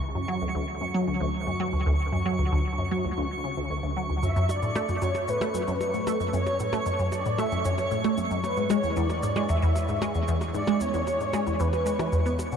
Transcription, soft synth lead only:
0, 0, Header, 1, 2, 480
1, 0, Start_track
1, 0, Key_signature, 3, "minor"
1, 0, Tempo, 526316
1, 18, Time_signature, 4, 2, 24, 8
1, 11461, End_track
2, 0, Start_track
2, 0, Title_t, "Soft synth lead"
2, 0, Program_c, 0, 80
2, 3863, Note_on_c, 0, 76, 117
2, 4105, Note_on_c, 0, 74, 108
2, 4118, Note_off_c, 0, 76, 0
2, 4589, Note_on_c, 0, 73, 97
2, 4603, Note_off_c, 0, 74, 0
2, 4828, Note_on_c, 0, 71, 93
2, 4841, Note_off_c, 0, 73, 0
2, 5543, Note_off_c, 0, 71, 0
2, 5778, Note_on_c, 0, 73, 90
2, 6001, Note_off_c, 0, 73, 0
2, 6017, Note_on_c, 0, 73, 96
2, 6464, Note_off_c, 0, 73, 0
2, 6500, Note_on_c, 0, 74, 102
2, 6737, Note_on_c, 0, 76, 115
2, 6751, Note_off_c, 0, 74, 0
2, 6973, Note_off_c, 0, 76, 0
2, 6978, Note_on_c, 0, 73, 98
2, 7425, Note_off_c, 0, 73, 0
2, 7700, Note_on_c, 0, 71, 93
2, 7922, Note_off_c, 0, 71, 0
2, 7941, Note_on_c, 0, 73, 89
2, 8182, Note_on_c, 0, 74, 103
2, 8195, Note_off_c, 0, 73, 0
2, 8661, Note_on_c, 0, 76, 109
2, 8674, Note_off_c, 0, 74, 0
2, 9139, Note_off_c, 0, 76, 0
2, 9622, Note_on_c, 0, 74, 116
2, 9861, Note_on_c, 0, 73, 117
2, 9875, Note_off_c, 0, 74, 0
2, 10578, Note_on_c, 0, 71, 96
2, 10591, Note_off_c, 0, 73, 0
2, 11298, Note_off_c, 0, 71, 0
2, 11461, End_track
0, 0, End_of_file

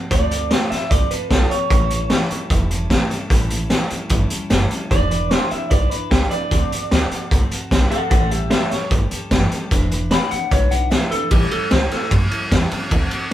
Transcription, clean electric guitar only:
0, 0, Header, 1, 2, 480
1, 0, Start_track
1, 0, Tempo, 400267
1, 133, Time_signature, 4, 2, 24, 8
1, 15988, End_track
2, 0, Start_track
2, 0, Title_t, "Clean electric guitar"
2, 0, Program_c, 0, 27
2, 131, Note_on_c, 0, 74, 103
2, 828, Note_off_c, 0, 74, 0
2, 844, Note_on_c, 0, 76, 87
2, 1079, Note_off_c, 0, 76, 0
2, 1086, Note_on_c, 0, 74, 90
2, 1320, Note_off_c, 0, 74, 0
2, 1329, Note_on_c, 0, 71, 101
2, 1560, Note_off_c, 0, 71, 0
2, 1565, Note_on_c, 0, 69, 92
2, 1799, Note_off_c, 0, 69, 0
2, 1801, Note_on_c, 0, 73, 93
2, 3199, Note_off_c, 0, 73, 0
2, 5889, Note_on_c, 0, 74, 112
2, 6405, Note_off_c, 0, 74, 0
2, 6405, Note_on_c, 0, 72, 112
2, 6587, Note_off_c, 0, 72, 0
2, 6613, Note_on_c, 0, 76, 76
2, 6835, Note_off_c, 0, 76, 0
2, 6840, Note_on_c, 0, 74, 99
2, 7074, Note_off_c, 0, 74, 0
2, 7074, Note_on_c, 0, 71, 78
2, 7314, Note_off_c, 0, 71, 0
2, 7324, Note_on_c, 0, 67, 77
2, 7559, Note_off_c, 0, 67, 0
2, 7563, Note_on_c, 0, 74, 101
2, 8965, Note_off_c, 0, 74, 0
2, 9479, Note_on_c, 0, 69, 83
2, 9487, Note_on_c, 0, 78, 92
2, 9703, Note_off_c, 0, 69, 0
2, 9709, Note_off_c, 0, 78, 0
2, 9718, Note_on_c, 0, 69, 81
2, 9724, Note_on_c, 0, 78, 89
2, 9961, Note_off_c, 0, 69, 0
2, 9961, Note_on_c, 0, 67, 83
2, 9970, Note_off_c, 0, 78, 0
2, 9970, Note_on_c, 0, 76, 88
2, 10180, Note_off_c, 0, 67, 0
2, 10189, Note_off_c, 0, 76, 0
2, 10194, Note_on_c, 0, 67, 80
2, 10203, Note_on_c, 0, 76, 94
2, 10426, Note_off_c, 0, 67, 0
2, 10434, Note_off_c, 0, 76, 0
2, 10434, Note_on_c, 0, 73, 87
2, 10677, Note_off_c, 0, 73, 0
2, 12135, Note_on_c, 0, 83, 102
2, 12364, Note_on_c, 0, 78, 93
2, 12367, Note_off_c, 0, 83, 0
2, 12602, Note_off_c, 0, 78, 0
2, 12607, Note_on_c, 0, 73, 90
2, 12843, Note_off_c, 0, 73, 0
2, 12845, Note_on_c, 0, 78, 85
2, 13071, Note_off_c, 0, 78, 0
2, 13071, Note_on_c, 0, 76, 81
2, 13315, Note_off_c, 0, 76, 0
2, 13325, Note_on_c, 0, 69, 103
2, 13560, Note_off_c, 0, 69, 0
2, 13565, Note_on_c, 0, 67, 96
2, 13802, Note_off_c, 0, 67, 0
2, 13813, Note_on_c, 0, 69, 87
2, 14046, Note_off_c, 0, 69, 0
2, 14060, Note_on_c, 0, 72, 91
2, 14290, Note_off_c, 0, 72, 0
2, 14295, Note_on_c, 0, 69, 83
2, 14527, Note_off_c, 0, 69, 0
2, 15988, End_track
0, 0, End_of_file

